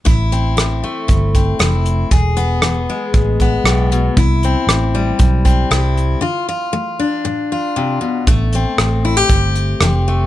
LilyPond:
<<
  \new Staff \with { instrumentName = "Steel-string acoustic guitar" } { \clef bass \time 4/4 \key a \minor \tempo 4 = 117 << { e'8 c'4 a4 c'8 e'4 | gis'8 b4 gis4 b4. | e'8 c'4 g4 c'8 e'4 | f'8 f'4 d'4 f'4. |
a8 c'4 e'16 g'4~ g'16 c'8 a8 | } \\ { a,4 e4 e,4 e4 | e,4 e4 b,4 a,8 b,8 | c4 e4 g,4 e4 | d4 a4 a,4 c8 b,8 |
a,4 e4 e,4 e4 | } >> }
  \new Staff \with { instrumentName = "Fingered electric bass" } { \clef bass \time 4/4 \key a \minor a,,2 g,,4 f,,4 | e,,2 a,,4 b,,4 | c,4 a,,4 b,,4 c,4 | r1 |
a,,4 a,,4 g,,4 f,,4 | }
  \new DrumStaff \with { instrumentName = "Drums" } \drummode { \time 4/4 <hh bd>8 hh8 <hh ss>4 <hh bd>8 <hh bd>8 <hh ss>8 hh8 | <hh bd>8 hh8 <hh ss>4 <hh bd>8 <hh bd>8 <hh ss>8 hh8 | <hh bd>8 hh8 <hh ss>4 <hh bd>8 <hh bd>8 <hh ss>8 hh8 | r4 r4 r4 r4 |
<hh bd>8 hh8 <hh ss>4 <hh bd>8 hh8 <hh ss>4 | }
>>